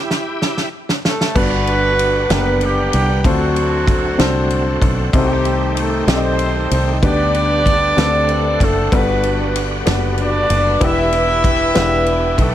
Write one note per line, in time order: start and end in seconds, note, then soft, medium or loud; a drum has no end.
0.00 0.69 E4 medium
0.00 0.69 G4 medium
0.11 snare medium
0.42 snare medium
0.57 snare soft
0.89 snare medium
1.05 1.35 A3 medium
1.05 1.35 A4 medium
1.05 snare medium
1.21 snare medium
1.35 2.26 G1 loud
1.35 2.26 G2 medium
1.35 3.21 D3 medium
1.35 3.21 G3 medium
1.35 2.26 G3 medium
1.35 2.25 B3 medium
1.35 3.21 B3 medium
1.35 2.31 B3 loud
1.35 2.26 D4 medium
1.35 2.28 D4 medium
1.35 2.26 F#4 medium
1.35 2.28 F#4 medium
1.35 2.26 B4 medium
1.35 2.31 B4 loud
1.35 3.21 F#5 medium
1.35 kick loud
1.35 crash medium
1.67 ride soft
1.99 ride medium
2.30 2.89 F#1 medium
2.30 3.20 B3 medium
2.30 2.61 B3 medium
2.30 3.20 D4 medium
2.30 3.21 G4 medium
2.30 2.37 A#4 medium
2.30 2.61 B4 medium
2.30 3.20 F#5 medium
2.30 snare loud
2.30 ride medium
2.38 3.24 B4 medium
2.61 3.26 G3 medium
2.61 3.22 B3 medium
2.61 3.22 D4 medium
2.61 3.26 G4 loud
2.61 ride soft
2.93 3.22 C2 medium
2.93 ride medium
3.24 4.15 D2 medium
3.24 4.15 D3 medium
3.24 5.10 D3 medium
3.24 4.79 F#3 medium
3.24 5.10 A3 medium
3.24 4.80 A3 medium
3.24 4.14 C4 medium
3.24 5.11 C4 medium
3.24 4.79 C4 medium
3.24 4.15 D4 medium
3.24 3.31 F4 medium
3.24 5.10 F#4 medium
3.24 4.79 F#4 medium
3.24 4.15 A4 medium
3.24 4.15 C5 medium
3.24 kick loud
3.24 ride medium
3.31 4.17 F#4 medium
3.56 ride soft
3.87 kick loud
3.87 ride medium
4.18 4.78 C2 medium
4.18 5.08 C4 medium
4.18 5.09 D4 medium
4.18 5.09 F#4 medium
4.18 5.09 A4 medium
4.18 5.09 C5 loud
4.18 snare loud
4.18 ride medium
4.50 ride soft
4.82 5.11 B1 loud
4.82 kick medium
4.82 ride medium
5.13 6.04 C2 loud
5.13 6.04 C3 medium
5.13 6.99 D#3 medium
5.13 5.74 G3 medium
5.13 6.98 A3 medium
5.13 6.99 C4 medium
5.13 6.03 C4 medium
5.13 6.03 D#4 medium
5.13 6.06 D#4 medium
5.13 6.98 G4 medium
5.13 6.04 G4 medium
5.13 5.74 G4 medium
5.13 6.04 A4 medium
5.13 6.04 C5 medium
5.13 kick loud
5.13 ride medium
5.45 ride soft
5.77 6.09 A3 medium
5.77 6.09 A4 medium
5.77 ride medium
6.07 6.67 B1 medium
6.07 6.98 C4 medium
6.07 6.98 D#4 medium
6.07 6.98 G4 medium
6.07 6.99 A4 medium
6.07 6.16 D5 medium
6.07 snare loud
6.07 ride medium
6.12 7.00 C4 medium
6.12 7.00 D#4 medium
6.12 7.00 A4 medium
6.12 7.00 C5 medium
6.16 7.02 D#5 medium
6.39 ride soft
6.71 7.00 C2 medium
6.71 ride medium
7.02 7.93 D2 medium
7.02 7.96 D3 medium
7.02 7.93 D3 medium
7.02 7.97 G3 medium
7.02 7.92 B3 medium
7.02 7.97 B3 medium
7.02 7.93 D4 medium
7.02 7.97 G4 medium
7.02 7.93 G4 medium
7.02 7.93 B4 medium
7.02 7.93 D5 medium
7.02 kick loud
7.02 ride medium
7.06 8.62 D4 loud
7.06 8.58 G4 medium
7.06 8.58 B4 medium
7.06 8.62 D5 loud
7.34 ride soft
7.66 kick medium
7.66 ride medium
7.97 8.56 D2 loud
7.97 8.91 D3 medium
7.97 8.88 D3 medium
7.97 8.92 A3 medium
7.97 8.87 C4 medium
7.97 8.92 C4 medium
7.97 8.87 D4 medium
7.97 8.04 E4 medium
7.97 8.87 A4 medium
7.97 8.04 B4 medium
7.97 8.87 F#5 medium
7.97 snare loud
7.97 ride medium
8.04 8.91 D5 loud
8.04 8.95 F#5 medium
8.29 ride soft
8.60 8.89 F#1 medium
8.60 8.93 A3 medium
8.60 8.93 A4 medium
8.60 kick medium
8.60 ride medium
8.92 9.82 G1 medium
8.92 9.83 G2 medium
8.92 10.77 D3 medium
8.92 10.77 G3 medium
8.92 9.82 G3 medium
8.92 9.81 B3 medium
8.92 10.77 B3 medium
8.92 9.61 B3 medium
8.92 9.82 D4 medium
8.92 9.83 D4 medium
8.92 10.77 F#4 medium
8.92 9.82 F#4 medium
8.92 9.83 F#4 medium
8.92 8.99 A4 medium
8.92 9.61 B4 loud
8.92 kick loud
8.92 ride medium
9.00 9.86 B4 medium
9.23 ride soft
9.56 ride medium
9.86 10.45 F#1 medium
9.86 10.77 G3 medium
9.86 10.76 B3 medium
9.86 10.76 D4 medium
9.86 10.76 F#4 medium
9.86 10.77 D5 medium
9.86 snare loud
9.86 ride medium
9.90 10.17 B3 medium
9.90 10.17 B4 medium
10.18 10.83 D4 loud
10.18 10.78 F#4 medium
10.18 10.78 B4 medium
10.18 10.83 D5 loud
10.18 ride soft
10.50 10.78 F#1 medium
10.50 ride medium
10.80 11.71 E1 loud
10.80 11.71 E3 medium
10.80 12.55 E3 medium
10.80 11.70 B3 medium
10.80 12.55 B3 medium
10.80 11.70 D4 medium
10.80 12.55 D4 medium
10.80 11.70 E4 medium
10.80 12.40 E4 loud
10.80 12.55 G4 medium
10.80 11.71 G4 medium
10.80 12.35 G4 medium
10.80 11.71 B4 medium
10.80 12.35 B4 medium
10.80 12.40 E5 loud
10.80 kick loud
10.80 ride medium
11.12 ride soft
11.44 kick medium
11.44 ride medium
11.75 12.35 E1 loud
11.75 12.55 B3 medium
11.75 12.55 D4 medium
11.75 12.55 E4 medium
11.75 12.55 G4 medium
11.75 12.55 B4 loud
11.75 snare loud
11.75 ride medium
12.06 ride soft
12.38 12.55 B1 loud
12.38 12.55 A3 medium
12.38 12.55 A4 medium
12.38 kick medium
12.38 ride medium